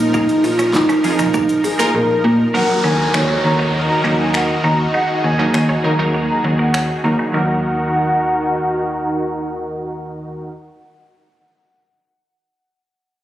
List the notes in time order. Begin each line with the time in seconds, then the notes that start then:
Already playing: A#2 F3 D#4 A#4
0.14 A#3 D#4 F4 G#4, kick, shaker
0.29 closed hi-hat, shaker
0.44 A#1 F4, muted clean electric guitar stroke, open hi-hat, shaker
0.59 C#4, closed hi-hat, shaker
0.73 D#4, kick, snare, clap, shaker
0.89 C#4, closed hi-hat, shaker
1.04 F2 D#4 F4 G#4, muted clean electric guitar stroke, open hi-hat, shaker
1.19 A#1 D#4, closed hi-hat, shaker
1.34 A#3, kick, shaker
1.49 closed hi-hat, shaker
1.64 G#1 G#4, muted clean electric guitar stroke, open hi-hat, shaker
1.79 A#3 D#4 F4 A#4, closed hi-hat, shaker
1.94 A#1 A#4
2.24 A#2
2.54 D#3 F#3 A#3 D#4 F#4 A#4 F#5, downlifter
2.84 D#2 C#4 G#5
2.99 muted clean electric guitar stroke
3.14 D#2 D#4 C#5, finger snap
3.29 muted clean electric guitar stroke
3.44 D#2 A#5
3.59 D#4
3.75 D#5
3.89 A#5
4.04 D#2 F#3 A#3 C#4 D#4 A#4
4.19 G#5
4.34 F#5, finger snap
4.64 D#2 D#4 A#5
4.94 D#4 G#4 F#5
5.24 D#2 G#5, muted clean electric guitar stroke
5.39 F#3 A#3 C#4 D#4 A#4
5.54 D#2, finger snap
5.69 C#4
5.84 D#2 F#3 A#3 D#4 A#4 A#5, muted clean electric guitar stroke
5.99 F#3 A#3 D#4 A#4
6.14 A#3
6.29 A#5
6.44 D#2, muted clean electric guitar stroke
6.59 A#3 F#5
6.74 C#4, finger snap
7.04 D#2 F#3 A#3 D#4 A#4, muted clean electric guitar stroke
7.19 D#4
7.32 D#2 D#3 F#3 A#3 D#4 F#4 A#4 F#5
7.36 A#4